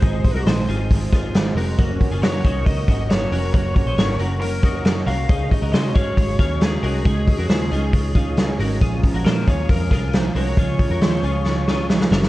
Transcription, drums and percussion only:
0.02 kick, hi-hat pedal, open hi-hat
0.24 kick, hi-hat pedal, open hi-hat
0.46 snare, hi-hat pedal, open hi-hat
0.69 hi-hat pedal, open hi-hat
0.91 kick, hi-hat pedal, open hi-hat
1.13 kick, snare, hi-hat pedal, open hi-hat
1.35 snare, hi-hat pedal, open hi-hat
1.57 hi-hat pedal, open hi-hat
1.79 kick, hi-hat pedal, open hi-hat
2.01 kick, hi-hat pedal, open hi-hat
2.23 snare, hi-hat pedal, open hi-hat
2.44 kick, hi-hat pedal, open hi-hat
2.66 kick, hi-hat pedal, open hi-hat
2.88 kick, hi-hat pedal, open hi-hat
3.10 snare, hi-hat pedal, open hi-hat
3.32 hi-hat pedal, open hi-hat
3.54 kick, hi-hat pedal, open hi-hat
3.76 kick, hi-hat pedal, open hi-hat
3.98 snare, hi-hat pedal, open hi-hat
4.19 hi-hat pedal, open hi-hat
4.41 hi-hat pedal, open hi-hat
4.63 kick, snare, hi-hat pedal, open hi-hat
4.85 snare, hi-hat pedal, open hi-hat
5.07 hi-hat pedal, open hi-hat
5.29 kick, hi-hat pedal, open hi-hat
5.51 kick, hi-hat pedal, open hi-hat
5.73 snare, hi-hat pedal, open hi-hat
5.95 kick, hi-hat pedal, open hi-hat
6.17 kick, hi-hat pedal, open hi-hat
6.39 kick, snare, hi-hat pedal, open hi-hat
6.61 snare, hi-hat pedal, open hi-hat
6.83 hi-hat pedal, open hi-hat
7.05 kick, hi-hat pedal, open hi-hat
7.28 kick, hi-hat pedal, open hi-hat
7.49 snare, hi-hat pedal, open hi-hat
7.71 hi-hat pedal, open hi-hat
7.93 kick, hi-hat pedal, open hi-hat
8.15 kick, hi-hat pedal, open hi-hat
8.37 snare, hi-hat pedal, open hi-hat
8.60 hi-hat pedal, open hi-hat
8.81 kick, hi-hat pedal, open hi-hat
9.04 kick, hi-hat pedal, open hi-hat
9.26 snare, hi-hat pedal, open hi-hat
9.48 kick, hi-hat pedal, open hi-hat
9.69 kick, hi-hat pedal, open hi-hat
9.91 kick, snare, hi-hat pedal, open hi-hat
10.13 snare, hi-hat pedal, open hi-hat
10.36 hi-hat pedal, open hi-hat
10.57 kick, hi-hat pedal, open hi-hat
10.79 kick, hi-hat pedal, open hi-hat
11.01 snare, hi-hat pedal, open hi-hat
11.23 hi-hat pedal, open hi-hat
11.46 snare
11.68 snare
11.90 snare
12.01 snare
12.12 snare
12.23 snare

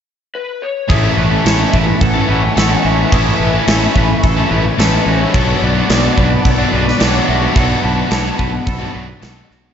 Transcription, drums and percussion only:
0.90 kick, crash
1.46 snare, crash
1.74 kick
2.01 kick, crash
2.57 snare, crash
3.12 kick, crash
3.68 snare, crash
3.96 kick
4.24 kick, crash
4.79 snare, crash
5.34 kick, crash
5.89 snare, crash
6.18 kick
6.45 kick, crash
6.88 snare
7.00 snare, crash
7.56 kick, crash
8.11 snare, crash
8.39 kick
8.67 kick, crash
9.22 snare, crash
9.51 snare

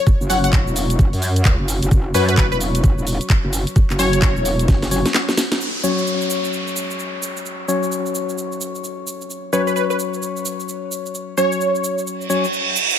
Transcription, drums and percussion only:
0.07 kick, closed hi-hat, cabasa
0.21 cabasa
0.30 open hi-hat, cabasa
0.44 closed hi-hat, cabasa
0.53 kick, clap, closed hi-hat, cabasa
0.67 cabasa
0.76 open hi-hat, cabasa
0.90 closed hi-hat, cabasa
0.99 kick, closed hi-hat, cabasa
1.13 open hi-hat, cabasa
1.22 open hi-hat, cabasa
1.36 closed hi-hat, cabasa
1.45 kick, clap, closed hi-hat, cabasa
1.68 open hi-hat, cabasa
1.82 closed hi-hat, cabasa
1.91 kick, closed hi-hat, cabasa
2.14 open hi-hat, cabasa
2.29 closed hi-hat, cabasa
2.37 kick, clap, closed hi-hat, cabasa
2.52 cabasa
2.61 open hi-hat, cabasa
2.75 closed hi-hat, cabasa
2.84 kick, closed hi-hat, cabasa
2.98 cabasa
3.07 open hi-hat, cabasa
3.21 closed hi-hat, cabasa
3.30 kick, clap, closed hi-hat, cabasa
3.53 open hi-hat, cabasa
3.67 closed hi-hat, cabasa
3.76 kick, closed hi-hat, cabasa
3.90 clap, cabasa
3.99 open hi-hat, cabasa
4.13 closed hi-hat, cabasa
4.22 kick, clap, closed hi-hat, cabasa
4.37 cabasa
4.45 open hi-hat, cabasa
4.59 closed hi-hat, cabasa
4.68 kick, snare, closed hi-hat, cabasa
4.82 snare, open hi-hat, cabasa
4.91 open hi-hat, cabasa
5.06 snare, closed hi-hat, cabasa
5.14 snare, clap, closed hi-hat, cabasa
5.29 snare, cabasa
5.37 snare, open hi-hat, cabasa
5.52 snare, closed hi-hat, cabasa
5.61 cabasa
5.84 cabasa
5.98 cabasa
6.07 cabasa
6.21 cabasa
6.30 cabasa
6.44 cabasa
6.53 cabasa
6.67 cabasa
6.76 cabasa
6.91 cabasa
6.99 cabasa
7.22 cabasa
7.37 cabasa
7.46 cabasa
7.69 cabasa
7.83 cabasa
7.92 cabasa
8.06 cabasa
8.15 cabasa
8.29 cabasa
8.38 cabasa
8.52 cabasa
8.61 cabasa
8.75 cabasa
8.84 cabasa
9.07 cabasa
9.21 cabasa
9.30 cabasa
9.53 cabasa
9.67 cabasa
9.76 cabasa
9.90 cabasa
9.99 cabasa
10.14 cabasa
10.22 cabasa
10.37 cabasa
10.45 cabasa
10.60 cabasa
10.69 cabasa
10.92 cabasa
11.06 cabasa
11.15 cabasa
11.38 cabasa
11.52 cabasa
11.61 cabasa
11.75 cabasa
11.84 cabasa
11.98 cabasa
12.07 cabasa
12.21 cabasa
12.30 cabasa
12.44 cabasa
12.53 cabasa
12.76 cabasa
12.90 cabasa

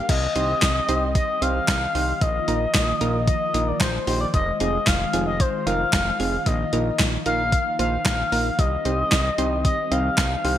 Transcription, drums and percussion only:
0.09 kick, closed hi-hat, crash
0.36 closed hi-hat
0.62 kick, snare, clap, closed hi-hat
0.89 closed hi-hat
1.15 kick, closed hi-hat
1.42 closed hi-hat
1.68 kick, snare, clap, closed hi-hat
1.95 open hi-hat
2.21 kick, closed hi-hat
2.48 closed hi-hat
2.75 kick, snare, clap, closed hi-hat
3.01 closed hi-hat
3.28 kick, closed hi-hat
3.54 closed hi-hat
3.80 kick, snare, clap, closed hi-hat
4.07 open hi-hat
4.34 kick, closed hi-hat
4.60 closed hi-hat
4.87 kick, snare, clap, closed hi-hat
5.13 closed hi-hat
5.40 kick, closed hi-hat
5.67 closed hi-hat
5.93 kick, snare, clap, closed hi-hat
6.20 open hi-hat
6.46 kick, closed hi-hat
6.73 closed hi-hat
6.99 kick, snare, clap, closed hi-hat
7.26 closed hi-hat
7.52 kick, closed hi-hat
7.79 closed hi-hat
8.05 kick, snare, clap, closed hi-hat
8.32 open hi-hat
8.59 kick, closed hi-hat
8.85 closed hi-hat
9.12 kick, snare, clap, closed hi-hat
9.38 closed hi-hat
9.65 kick, closed hi-hat
9.92 closed hi-hat
10.18 kick, snare, clap, closed hi-hat
10.45 open hi-hat

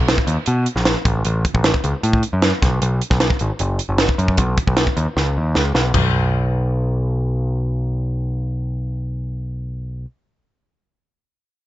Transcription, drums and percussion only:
0.08 snare, closed hi-hat
0.18 kick
0.27 closed hi-hat
0.46 closed hi-hat
0.66 closed hi-hat
0.76 snare
0.85 snare, closed hi-hat
1.05 kick, closed hi-hat
1.25 closed hi-hat
1.45 kick, closed hi-hat
1.55 kick
1.64 snare, closed hi-hat
1.74 kick
1.84 closed hi-hat
2.04 closed hi-hat
2.13 kick
2.23 closed hi-hat
2.42 snare, closed hi-hat
2.62 kick, snare, closed hi-hat
2.82 closed hi-hat
3.02 closed hi-hat
3.10 kick, snare
3.20 snare, closed hi-hat
3.30 kick
3.39 closed hi-hat
3.59 closed hi-hat
3.79 closed hi-hat
3.98 snare, closed hi-hat
4.09 kick
4.19 closed hi-hat
4.28 kick
4.37 kick, closed hi-hat
4.58 kick, closed hi-hat
4.68 kick
4.77 snare, closed hi-hat
4.87 kick
4.97 closed hi-hat
5.17 snare
5.55 snare
5.75 snare
5.94 kick, floor tom, china

